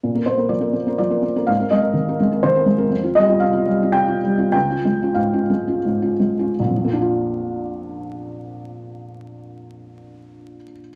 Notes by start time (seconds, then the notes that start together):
0.03 A#2
0.15 A#3 A#4
0.26 A#3 C5
0.37 A#3 A#4
0.49 F3 D5
0.61 A#3 A#4
0.73 A#3
0.87 A#3 A#4
0.98 F3 D5
1.10 A#3 A#4
1.22 A#3
1.36 A#3 A#4
1.47 G#2 F5
1.60 C4 A#4
1.70 G#3 D#5
1.81 C4 A#4
1.93 D#3
2.08 C4 A#4
2.20 G#3
2.32 C4 A#4
2.43 D#3 C5
2.55 C4 A#4
2.66 G#3
2.78 C4 A#4
2.90 F2
3.03 C4 F4
3.15 G3 D#5
3.28 C4 F4
3.40 C3 F5
3.53 C4 F4
3.66 G3
3.82 C4 F4
3.92 C3 G5
4.08 C4 F4
4.24 G3
4.38 C4 F4
4.52 C#2 G5
4.70 C#4 F4
4.85 G#3
5.02 C#4 F4
5.14 G#2 F5
5.33 C#4 F4
5.50 G#3
5.67 C#4 F4
5.85 G#2
6.02 C#4 F4
6.20 G#3
6.39 C#4 F4
6.59 A#1
6.68 F2
6.76 F3
6.85 A#3
6.93 D4
7.01 F4